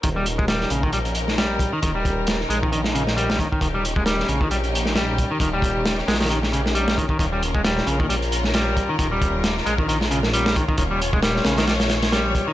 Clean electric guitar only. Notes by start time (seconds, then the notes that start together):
0.03 D#3
0.16 G3
0.38 G#3
0.48 G3
0.71 C#3
0.83 D#3
0.93 G3
1.38 G3
1.73 D#3
1.82 D#3
1.95 G3
2.50 G#3
2.63 D#3
2.72 D#3
2.94 C#3
3.17 G3
3.39 D#3
3.52 D#3
3.62 D#3
3.74 G3
3.97 G#3
4.06 G3
4.29 C#3
4.42 D#3
4.51 G3
4.96 G3
5.31 D#3
5.41 D#3
5.53 G3
6.08 G#3
6.20 D#3
6.30 D#3
6.52 C#3
6.75 G3
6.97 D#3
7.10 D#3
7.20 D#3
7.32 G3
7.55 G#3
7.65 G3
7.87 C#3
8.00 D#3
8.09 G3
8.54 G3
8.89 D#3
8.99 D#3
9.12 G3
9.66 G#3
9.79 D#3
9.88 D#3
10.11 C#3
10.33 G3
10.56 D#3
10.68 D#3
10.78 D#3
10.91 G3
11.13 G#3
11.23 G3
11.45 C#3
11.58 D#3
11.67 G3
12.12 G3
12.47 D#3